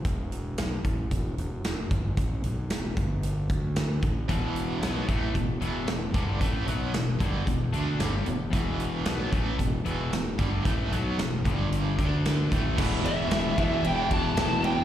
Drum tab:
CC |--------|--------|--------|--------|
RD |--------|--------|--------|--------|
HH |xxxxxxxx|xxxxxxxx|xxxxxxxx|xxxxxxxx|
SD |--o---o-|--o---o-|--o---o-|--o---o-|
BD |o--oo--o|o--o-o-o|o--oo--o|o--oo---|

CC |--------|--------|x-------|
RD |--------|--------|-xxxxxxx|
HH |xxxxxxxx|xxxxxxxx|--------|
SD |--o---o-|--o---o-|-oo---o-|
BD |o--oo--o|o--o-o-o|o--o-o--|